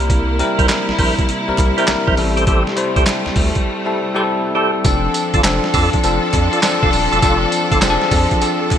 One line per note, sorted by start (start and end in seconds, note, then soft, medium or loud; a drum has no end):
0.00 0.42 C2 loud
0.00 4.81 C3 medium
0.00 0.37 G3 medium
0.00 2.13 A#3 medium
0.00 0.37 C4 medium
0.00 0.37 E4 medium
0.00 2.15 E4 medium
0.00 0.37 A#4 medium
0.00 closed hi-hat medium
0.10 kick loud
0.10 closed hi-hat medium
0.39 1.39 G3 medium
0.39 1.39 C4 medium
0.39 1.39 E4 medium
0.39 1.39 A#4 loud
0.39 closed hi-hat medium
0.58 0.67 C2 medium
0.58 0.67 E4 medium
0.58 0.67 A#4 medium
0.58 0.67 C5 medium
0.58 kick medium
0.58 closed hi-hat medium
0.69 snare loud
0.69 clap medium
0.69 closed hi-hat medium
0.89 0.93 A#1 medium
0.89 snare medium
0.98 1.14 A#1 loud
0.98 1.15 E4 medium
0.98 1.15 A#4 medium
0.98 1.15 C5 medium
0.98 kick loud
0.98 open hi-hat medium
1.19 kick medium
1.19 closed hi-hat soft
1.29 closed hi-hat medium
1.48 1.52 C2 soft
1.48 1.75 G3 medium
1.48 1.75 C4 medium
1.48 1.75 E4 medium
1.48 1.76 A#4 medium
1.58 1.74 C2 loud
1.58 kick medium
1.58 clap medium
1.58 closed hi-hat medium
1.77 2.15 G3 medium
1.77 2.16 C4 medium
1.77 1.86 E4 medium
1.77 2.16 E4 medium
1.77 1.86 A#4 medium
1.77 2.16 A#4 loud
1.77 1.86 C5 medium
1.77 closed hi-hat medium
1.88 1.96 A#1 medium
1.88 snare loud
1.88 clap medium
1.88 closed hi-hat medium
2.07 2.16 A#1 medium
2.07 2.15 E4 medium
2.07 2.16 A#4 medium
2.07 2.16 C5 medium
2.07 kick loud
2.17 2.65 A1 loud
2.17 2.74 G3 medium
2.17 4.82 G3 medium
2.17 4.82 A3 medium
2.17 2.74 C4 medium
2.17 2.75 E4 medium
2.17 2.75 A4 medium
2.17 open hi-hat medium
2.36 2.45 G4 medium
2.36 2.45 A4 medium
2.36 2.45 C5 medium
2.36 closed hi-hat medium
2.47 2.63 G4 medium
2.47 2.63 A4 medium
2.47 2.63 C5 medium
2.47 kick loud
2.47 closed hi-hat medium
2.67 snare medium
2.76 3.76 G3 medium
2.76 3.77 C4 medium
2.76 3.77 E4 medium
2.76 3.77 C5 loud
2.76 closed hi-hat medium
2.96 3.04 C2 medium
2.96 3.05 G4 medium
2.96 3.05 A4 medium
2.96 3.05 C5 medium
2.96 kick medium
2.96 closed hi-hat medium
3.06 snare loud
3.06 clap medium
3.06 closed hi-hat medium
3.26 3.30 D2 soft
3.26 snare medium
3.36 3.52 D2 loud
3.36 kick loud
3.36 open hi-hat medium
3.55 kick medium
3.55 closed hi-hat soft
3.85 4.13 G3 medium
3.85 4.13 C4 medium
3.85 4.13 E4 medium
3.85 4.13 A4 medium
4.15 4.53 G3 medium
4.15 4.53 C4 medium
4.15 4.53 E4 medium
4.15 4.24 G4 medium
4.15 4.24 A4 medium
4.15 4.53 A4 loud
4.15 4.24 C5 medium
4.55 4.85 G3 medium
4.55 4.83 C4 medium
4.55 4.85 E4 medium
4.55 4.71 G4 medium
4.55 4.71 A4 medium
4.55 4.84 A4 medium
4.55 4.71 C5 loud
4.84 5.08 F1 loud
4.84 5.41 F3 medium
4.84 8.78 F3 medium
4.84 5.41 C4 medium
4.84 5.42 D4 medium
4.84 8.78 D4 medium
4.84 8.78 A4 medium
4.84 5.42 A4 medium
4.84 kick loud
4.84 closed hi-hat medium
4.84 tambourine medium
5.14 closed hi-hat medium
5.14 tambourine medium
5.34 5.42 G1 medium
5.34 5.42 F4 medium
5.34 5.42 A4 medium
5.34 5.42 D5 medium
5.34 kick medium
5.34 closed hi-hat medium
5.44 5.60 F1 loud
5.44 6.01 F3 medium
5.44 6.01 C4 medium
5.44 6.01 D4 medium
5.44 6.01 A4 medium
5.44 snare loud
5.44 clap medium
5.44 closed hi-hat medium
5.44 tambourine loud
5.64 snare medium
5.74 5.90 F2 loud
5.74 5.90 F4 medium
5.74 5.90 A4 medium
5.74 5.90 D5 medium
5.74 kick loud
5.74 open hi-hat medium
5.74 tambourine medium
5.93 kick medium
5.93 closed hi-hat soft
6.03 6.19 F1 medium
6.03 6.60 F3 medium
6.03 6.60 C4 medium
6.03 6.61 D4 medium
6.03 6.61 A4 medium
6.03 closed hi-hat medium
6.03 tambourine medium
6.33 6.49 F2 loud
6.33 kick medium
6.33 clap medium
6.33 closed hi-hat medium
6.53 6.61 F4 medium
6.53 6.61 A4 medium
6.53 6.61 D5 medium
6.53 closed hi-hat medium
6.63 7.20 F3 loud
6.63 7.20 C4 medium
6.63 7.20 D4 medium
6.63 7.21 A4 loud
6.63 snare loud
6.63 clap medium
6.63 closed hi-hat medium
6.63 tambourine medium
6.82 6.91 F1 medium
6.82 6.91 F4 medium
6.82 6.91 A4 medium
6.82 6.91 D5 medium
6.82 kick loud
6.93 7.08 D#1 medium
6.93 open hi-hat medium
6.93 tambourine medium
7.12 7.20 E1 medium
7.12 7.20 F4 medium
7.12 7.20 A4 medium
7.12 7.21 D5 medium
7.12 closed hi-hat medium
7.22 7.46 F1 loud
7.22 7.79 F3 loud
7.22 7.80 C4 medium
7.22 7.80 D4 medium
7.22 7.38 F4 medium
7.22 7.38 A4 medium
7.22 7.80 A4 loud
7.22 7.39 D5 loud
7.22 kick loud
7.22 closed hi-hat medium
7.22 tambourine medium
7.52 closed hi-hat medium
7.52 tambourine medium
7.71 7.80 G1 loud
7.71 7.80 F4 medium
7.71 7.80 A4 medium
7.71 7.80 D5 medium
7.71 kick medium
7.71 closed hi-hat medium
7.82 7.98 F1 loud
7.82 8.39 F3 loud
7.82 8.39 C4 medium
7.82 8.39 D4 medium
7.82 7.91 G#4 medium
7.82 snare loud
7.82 clap medium
7.82 closed hi-hat medium
7.82 tambourine loud
7.90 8.41 A4 loud
8.02 snare medium
8.11 8.27 F2 loud
8.11 kick loud
8.11 open hi-hat medium
8.11 tambourine medium
8.31 kick medium
8.31 closed hi-hat soft
8.41 8.78 F3 medium
8.41 8.78 C4 medium
8.41 8.78 D4 medium
8.41 8.78 A4 medium
8.41 closed hi-hat medium
8.41 tambourine medium
8.71 8.78 F1 medium
8.71 kick medium
8.71 clap medium
8.71 closed hi-hat medium